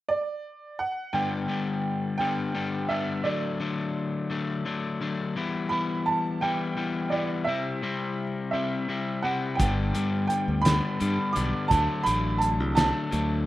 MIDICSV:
0, 0, Header, 1, 5, 480
1, 0, Start_track
1, 0, Key_signature, 1, "major"
1, 0, Tempo, 705882
1, 773, Time_signature, 6, 3, 24, 8
1, 9155, End_track
2, 0, Start_track
2, 0, Title_t, "Upright piano"
2, 0, Program_c, 0, 0
2, 58, Note_on_c, 0, 74, 79
2, 508, Note_off_c, 0, 74, 0
2, 537, Note_on_c, 0, 78, 78
2, 768, Note_on_c, 0, 79, 81
2, 782, Note_off_c, 0, 78, 0
2, 1470, Note_off_c, 0, 79, 0
2, 1481, Note_on_c, 0, 79, 79
2, 1963, Note_on_c, 0, 76, 72
2, 1981, Note_off_c, 0, 79, 0
2, 2201, Note_on_c, 0, 74, 60
2, 2215, Note_off_c, 0, 76, 0
2, 3139, Note_off_c, 0, 74, 0
2, 3871, Note_on_c, 0, 83, 81
2, 4119, Note_on_c, 0, 81, 76
2, 4129, Note_off_c, 0, 83, 0
2, 4348, Note_off_c, 0, 81, 0
2, 4360, Note_on_c, 0, 79, 73
2, 4828, Note_on_c, 0, 74, 63
2, 4860, Note_off_c, 0, 79, 0
2, 5062, Note_off_c, 0, 74, 0
2, 5063, Note_on_c, 0, 76, 71
2, 5589, Note_off_c, 0, 76, 0
2, 5787, Note_on_c, 0, 76, 67
2, 6273, Note_on_c, 0, 78, 77
2, 6293, Note_off_c, 0, 76, 0
2, 6497, Note_on_c, 0, 79, 70
2, 6529, Note_off_c, 0, 78, 0
2, 6976, Note_off_c, 0, 79, 0
2, 6987, Note_on_c, 0, 79, 77
2, 7218, Note_on_c, 0, 83, 93
2, 7220, Note_off_c, 0, 79, 0
2, 7702, Note_on_c, 0, 86, 77
2, 7728, Note_off_c, 0, 83, 0
2, 7938, Note_off_c, 0, 86, 0
2, 7943, Note_on_c, 0, 81, 86
2, 8178, Note_off_c, 0, 81, 0
2, 8184, Note_on_c, 0, 83, 97
2, 8420, Note_on_c, 0, 81, 77
2, 8444, Note_off_c, 0, 83, 0
2, 8656, Note_off_c, 0, 81, 0
2, 8671, Note_on_c, 0, 81, 83
2, 9155, Note_off_c, 0, 81, 0
2, 9155, End_track
3, 0, Start_track
3, 0, Title_t, "Clean electric guitar"
3, 0, Program_c, 1, 27
3, 770, Note_on_c, 1, 43, 79
3, 773, Note_on_c, 1, 50, 81
3, 777, Note_on_c, 1, 55, 75
3, 779, Note_on_c, 1, 59, 87
3, 782, Note_on_c, 1, 62, 86
3, 1000, Note_off_c, 1, 43, 0
3, 1003, Note_off_c, 1, 50, 0
3, 1006, Note_off_c, 1, 55, 0
3, 1008, Note_off_c, 1, 59, 0
3, 1008, Note_on_c, 1, 43, 72
3, 1011, Note_on_c, 1, 50, 69
3, 1015, Note_on_c, 1, 55, 70
3, 1016, Note_off_c, 1, 62, 0
3, 1016, Note_on_c, 1, 59, 71
3, 1019, Note_on_c, 1, 62, 69
3, 1485, Note_off_c, 1, 43, 0
3, 1490, Note_off_c, 1, 50, 0
3, 1492, Note_off_c, 1, 55, 0
3, 1493, Note_off_c, 1, 59, 0
3, 1493, Note_on_c, 1, 43, 78
3, 1497, Note_off_c, 1, 62, 0
3, 1498, Note_on_c, 1, 50, 77
3, 1500, Note_on_c, 1, 55, 80
3, 1501, Note_on_c, 1, 59, 84
3, 1505, Note_on_c, 1, 62, 83
3, 1718, Note_off_c, 1, 43, 0
3, 1722, Note_off_c, 1, 50, 0
3, 1724, Note_off_c, 1, 55, 0
3, 1726, Note_off_c, 1, 59, 0
3, 1726, Note_on_c, 1, 43, 65
3, 1728, Note_off_c, 1, 62, 0
3, 1730, Note_on_c, 1, 50, 66
3, 1732, Note_on_c, 1, 55, 74
3, 1734, Note_on_c, 1, 59, 74
3, 1736, Note_on_c, 1, 62, 80
3, 1961, Note_off_c, 1, 43, 0
3, 1964, Note_off_c, 1, 50, 0
3, 1967, Note_off_c, 1, 55, 0
3, 1969, Note_off_c, 1, 59, 0
3, 1969, Note_on_c, 1, 43, 69
3, 1971, Note_off_c, 1, 62, 0
3, 1972, Note_on_c, 1, 50, 73
3, 1975, Note_on_c, 1, 55, 84
3, 1977, Note_on_c, 1, 59, 85
3, 1979, Note_on_c, 1, 62, 80
3, 2196, Note_off_c, 1, 43, 0
3, 2196, Note_off_c, 1, 50, 0
3, 2200, Note_off_c, 1, 55, 0
3, 2201, Note_off_c, 1, 59, 0
3, 2201, Note_off_c, 1, 62, 0
3, 2204, Note_on_c, 1, 50, 72
3, 2209, Note_on_c, 1, 54, 83
3, 2210, Note_on_c, 1, 57, 87
3, 2213, Note_on_c, 1, 62, 86
3, 2439, Note_off_c, 1, 50, 0
3, 2441, Note_off_c, 1, 54, 0
3, 2446, Note_off_c, 1, 57, 0
3, 2446, Note_off_c, 1, 62, 0
3, 2447, Note_on_c, 1, 50, 65
3, 2450, Note_on_c, 1, 54, 71
3, 2454, Note_on_c, 1, 57, 71
3, 2454, Note_on_c, 1, 62, 77
3, 2916, Note_off_c, 1, 50, 0
3, 2921, Note_off_c, 1, 54, 0
3, 2922, Note_off_c, 1, 57, 0
3, 2924, Note_off_c, 1, 62, 0
3, 2924, Note_on_c, 1, 50, 76
3, 2929, Note_on_c, 1, 54, 74
3, 2930, Note_on_c, 1, 57, 86
3, 2933, Note_on_c, 1, 62, 79
3, 3155, Note_off_c, 1, 50, 0
3, 3159, Note_off_c, 1, 54, 0
3, 3161, Note_off_c, 1, 57, 0
3, 3163, Note_on_c, 1, 50, 66
3, 3164, Note_off_c, 1, 62, 0
3, 3167, Note_on_c, 1, 54, 70
3, 3169, Note_on_c, 1, 57, 64
3, 3172, Note_on_c, 1, 62, 71
3, 3397, Note_off_c, 1, 50, 0
3, 3402, Note_off_c, 1, 54, 0
3, 3404, Note_off_c, 1, 62, 0
3, 3405, Note_off_c, 1, 57, 0
3, 3405, Note_on_c, 1, 50, 74
3, 3410, Note_on_c, 1, 54, 81
3, 3412, Note_on_c, 1, 62, 81
3, 3414, Note_on_c, 1, 57, 69
3, 3634, Note_off_c, 1, 50, 0
3, 3637, Note_off_c, 1, 54, 0
3, 3638, Note_off_c, 1, 57, 0
3, 3638, Note_off_c, 1, 62, 0
3, 3645, Note_on_c, 1, 52, 82
3, 3649, Note_on_c, 1, 55, 82
3, 3650, Note_on_c, 1, 59, 88
3, 3654, Note_on_c, 1, 64, 93
3, 3880, Note_off_c, 1, 52, 0
3, 3882, Note_off_c, 1, 59, 0
3, 3883, Note_off_c, 1, 55, 0
3, 3883, Note_on_c, 1, 52, 71
3, 3885, Note_on_c, 1, 55, 69
3, 3890, Note_off_c, 1, 64, 0
3, 3890, Note_on_c, 1, 59, 74
3, 3892, Note_on_c, 1, 64, 75
3, 4358, Note_off_c, 1, 52, 0
3, 4364, Note_off_c, 1, 59, 0
3, 4365, Note_off_c, 1, 55, 0
3, 4366, Note_off_c, 1, 64, 0
3, 4366, Note_on_c, 1, 52, 78
3, 4368, Note_on_c, 1, 55, 81
3, 4372, Note_on_c, 1, 59, 71
3, 4374, Note_on_c, 1, 64, 79
3, 4594, Note_off_c, 1, 52, 0
3, 4601, Note_off_c, 1, 55, 0
3, 4601, Note_off_c, 1, 59, 0
3, 4602, Note_on_c, 1, 52, 71
3, 4604, Note_off_c, 1, 64, 0
3, 4604, Note_on_c, 1, 55, 71
3, 4609, Note_on_c, 1, 59, 73
3, 4612, Note_on_c, 1, 64, 74
3, 4831, Note_off_c, 1, 52, 0
3, 4837, Note_off_c, 1, 59, 0
3, 4839, Note_off_c, 1, 64, 0
3, 4839, Note_on_c, 1, 52, 81
3, 4840, Note_off_c, 1, 55, 0
3, 4842, Note_on_c, 1, 55, 82
3, 4845, Note_on_c, 1, 59, 88
3, 4847, Note_on_c, 1, 64, 86
3, 5071, Note_off_c, 1, 52, 0
3, 5074, Note_off_c, 1, 59, 0
3, 5075, Note_off_c, 1, 64, 0
3, 5082, Note_off_c, 1, 55, 0
3, 5082, Note_on_c, 1, 48, 75
3, 5085, Note_on_c, 1, 55, 75
3, 5088, Note_on_c, 1, 60, 81
3, 5091, Note_on_c, 1, 64, 90
3, 5312, Note_off_c, 1, 48, 0
3, 5319, Note_off_c, 1, 60, 0
3, 5320, Note_on_c, 1, 48, 74
3, 5322, Note_off_c, 1, 55, 0
3, 5322, Note_off_c, 1, 64, 0
3, 5325, Note_on_c, 1, 55, 79
3, 5327, Note_on_c, 1, 60, 77
3, 5331, Note_on_c, 1, 64, 82
3, 5794, Note_off_c, 1, 48, 0
3, 5797, Note_off_c, 1, 55, 0
3, 5801, Note_off_c, 1, 60, 0
3, 5802, Note_off_c, 1, 64, 0
3, 5802, Note_on_c, 1, 48, 75
3, 5806, Note_on_c, 1, 55, 76
3, 5809, Note_on_c, 1, 60, 78
3, 5810, Note_on_c, 1, 64, 80
3, 6034, Note_off_c, 1, 48, 0
3, 6038, Note_off_c, 1, 55, 0
3, 6041, Note_off_c, 1, 60, 0
3, 6042, Note_on_c, 1, 48, 66
3, 6044, Note_off_c, 1, 64, 0
3, 6046, Note_on_c, 1, 55, 72
3, 6049, Note_on_c, 1, 60, 68
3, 6052, Note_on_c, 1, 64, 77
3, 6275, Note_off_c, 1, 48, 0
3, 6277, Note_off_c, 1, 55, 0
3, 6278, Note_off_c, 1, 60, 0
3, 6280, Note_off_c, 1, 64, 0
3, 6283, Note_on_c, 1, 48, 80
3, 6285, Note_on_c, 1, 55, 65
3, 6286, Note_on_c, 1, 60, 74
3, 6288, Note_on_c, 1, 64, 90
3, 6512, Note_off_c, 1, 48, 0
3, 6513, Note_off_c, 1, 55, 0
3, 6514, Note_off_c, 1, 60, 0
3, 6515, Note_off_c, 1, 64, 0
3, 6516, Note_on_c, 1, 43, 90
3, 6522, Note_on_c, 1, 50, 81
3, 6524, Note_on_c, 1, 55, 88
3, 6528, Note_on_c, 1, 59, 83
3, 6531, Note_on_c, 1, 62, 88
3, 6753, Note_off_c, 1, 43, 0
3, 6755, Note_off_c, 1, 50, 0
3, 6756, Note_off_c, 1, 55, 0
3, 6758, Note_off_c, 1, 59, 0
3, 6761, Note_on_c, 1, 43, 74
3, 6763, Note_on_c, 1, 50, 63
3, 6765, Note_off_c, 1, 62, 0
3, 6765, Note_on_c, 1, 55, 77
3, 6766, Note_on_c, 1, 59, 78
3, 6768, Note_on_c, 1, 62, 79
3, 7234, Note_off_c, 1, 43, 0
3, 7236, Note_off_c, 1, 50, 0
3, 7237, Note_off_c, 1, 55, 0
3, 7239, Note_off_c, 1, 59, 0
3, 7242, Note_off_c, 1, 62, 0
3, 7242, Note_on_c, 1, 43, 71
3, 7245, Note_on_c, 1, 50, 77
3, 7246, Note_on_c, 1, 55, 78
3, 7247, Note_on_c, 1, 59, 80
3, 7250, Note_on_c, 1, 62, 73
3, 7471, Note_off_c, 1, 43, 0
3, 7472, Note_off_c, 1, 50, 0
3, 7478, Note_off_c, 1, 55, 0
3, 7479, Note_off_c, 1, 59, 0
3, 7479, Note_on_c, 1, 43, 75
3, 7480, Note_on_c, 1, 50, 69
3, 7483, Note_off_c, 1, 62, 0
3, 7486, Note_on_c, 1, 55, 78
3, 7487, Note_on_c, 1, 59, 64
3, 7491, Note_on_c, 1, 62, 76
3, 7708, Note_off_c, 1, 43, 0
3, 7711, Note_off_c, 1, 50, 0
3, 7713, Note_off_c, 1, 55, 0
3, 7717, Note_on_c, 1, 43, 71
3, 7718, Note_off_c, 1, 59, 0
3, 7719, Note_off_c, 1, 62, 0
3, 7719, Note_on_c, 1, 50, 74
3, 7721, Note_on_c, 1, 55, 79
3, 7726, Note_on_c, 1, 59, 84
3, 7727, Note_on_c, 1, 62, 88
3, 7948, Note_off_c, 1, 43, 0
3, 7949, Note_off_c, 1, 50, 0
3, 7950, Note_off_c, 1, 55, 0
3, 7953, Note_off_c, 1, 59, 0
3, 7953, Note_off_c, 1, 62, 0
3, 7962, Note_on_c, 1, 50, 81
3, 7966, Note_on_c, 1, 54, 79
3, 7966, Note_on_c, 1, 57, 86
3, 7971, Note_on_c, 1, 62, 82
3, 8190, Note_off_c, 1, 50, 0
3, 8195, Note_off_c, 1, 54, 0
3, 8195, Note_off_c, 1, 57, 0
3, 8198, Note_on_c, 1, 50, 66
3, 8199, Note_off_c, 1, 62, 0
3, 8203, Note_on_c, 1, 54, 77
3, 8203, Note_on_c, 1, 57, 71
3, 8207, Note_on_c, 1, 62, 87
3, 8669, Note_off_c, 1, 50, 0
3, 8674, Note_off_c, 1, 54, 0
3, 8677, Note_on_c, 1, 50, 70
3, 8679, Note_off_c, 1, 57, 0
3, 8681, Note_off_c, 1, 62, 0
3, 8682, Note_on_c, 1, 54, 72
3, 8687, Note_on_c, 1, 57, 83
3, 8689, Note_on_c, 1, 62, 89
3, 8908, Note_off_c, 1, 50, 0
3, 8910, Note_off_c, 1, 54, 0
3, 8916, Note_off_c, 1, 57, 0
3, 8916, Note_on_c, 1, 50, 62
3, 8917, Note_off_c, 1, 62, 0
3, 8918, Note_on_c, 1, 54, 72
3, 8924, Note_on_c, 1, 57, 80
3, 8925, Note_on_c, 1, 62, 77
3, 9146, Note_off_c, 1, 50, 0
3, 9150, Note_off_c, 1, 54, 0
3, 9151, Note_off_c, 1, 57, 0
3, 9155, Note_off_c, 1, 62, 0
3, 9155, End_track
4, 0, Start_track
4, 0, Title_t, "Fingered electric bass"
4, 0, Program_c, 2, 33
4, 6525, Note_on_c, 2, 31, 80
4, 6739, Note_off_c, 2, 31, 0
4, 6772, Note_on_c, 2, 43, 72
4, 6982, Note_off_c, 2, 43, 0
4, 7127, Note_on_c, 2, 38, 72
4, 7339, Note_off_c, 2, 38, 0
4, 7490, Note_on_c, 2, 43, 78
4, 7596, Note_off_c, 2, 43, 0
4, 7730, Note_on_c, 2, 35, 74
4, 7835, Note_off_c, 2, 35, 0
4, 7962, Note_on_c, 2, 38, 91
4, 8071, Note_off_c, 2, 38, 0
4, 8208, Note_on_c, 2, 33, 79
4, 8568, Note_off_c, 2, 33, 0
4, 8568, Note_on_c, 2, 36, 77
4, 8779, Note_off_c, 2, 36, 0
4, 8928, Note_on_c, 2, 38, 80
4, 9139, Note_off_c, 2, 38, 0
4, 9155, End_track
5, 0, Start_track
5, 0, Title_t, "Drums"
5, 6525, Note_on_c, 9, 36, 87
5, 6525, Note_on_c, 9, 42, 71
5, 6593, Note_off_c, 9, 36, 0
5, 6593, Note_off_c, 9, 42, 0
5, 6763, Note_on_c, 9, 42, 52
5, 6831, Note_off_c, 9, 42, 0
5, 7003, Note_on_c, 9, 42, 49
5, 7071, Note_off_c, 9, 42, 0
5, 7243, Note_on_c, 9, 42, 78
5, 7249, Note_on_c, 9, 38, 94
5, 7311, Note_off_c, 9, 42, 0
5, 7317, Note_off_c, 9, 38, 0
5, 7483, Note_on_c, 9, 42, 49
5, 7551, Note_off_c, 9, 42, 0
5, 7724, Note_on_c, 9, 42, 53
5, 7792, Note_off_c, 9, 42, 0
5, 7963, Note_on_c, 9, 36, 83
5, 7963, Note_on_c, 9, 42, 68
5, 8031, Note_off_c, 9, 36, 0
5, 8031, Note_off_c, 9, 42, 0
5, 8203, Note_on_c, 9, 42, 53
5, 8271, Note_off_c, 9, 42, 0
5, 8443, Note_on_c, 9, 42, 48
5, 8511, Note_off_c, 9, 42, 0
5, 8681, Note_on_c, 9, 42, 69
5, 8687, Note_on_c, 9, 38, 94
5, 8749, Note_off_c, 9, 42, 0
5, 8755, Note_off_c, 9, 38, 0
5, 8924, Note_on_c, 9, 42, 51
5, 8992, Note_off_c, 9, 42, 0
5, 9155, End_track
0, 0, End_of_file